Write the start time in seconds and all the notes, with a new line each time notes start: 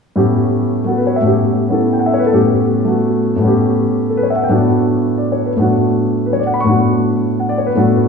0.16 A2 A3 B3 C#4 G4
0.84 A3 B3 F#4
0.89 A4
0.98 B4
1.07 C#5
1.16 E5
1.22 A2 A3 B3 C#4
1.27 G4
1.69 B3 C#4 E4 A4
1.93 G5
1.99 F#5
2.06 E5
2.14 C#5
2.19 B4
2.26 A4
2.33 A2 A3 B3 C#4 G4
2.85 A3 B3 F#4
3.36 A2 A3
3.41 B3 C#4
3.47 G4
4.10 A4
4.17 B4
4.23 C#5
4.30 E5
4.36 F#5
4.44 G5
4.49 A2 A3 B3 D4 F#4
5.18 D5
5.32 C#5
5.46 B4
5.57 A2 A3 B3 D4
5.61 F#4
6.26 B4
6.33 C#5
6.39 D5
6.47 F#5
6.54 B5
6.60 A2 C#6
6.65 A3 B3 D4 F#4
7.40 F#5
7.49 D5
7.58 C#5
7.67 B4
7.75 A2 A3 B3 D4 F#4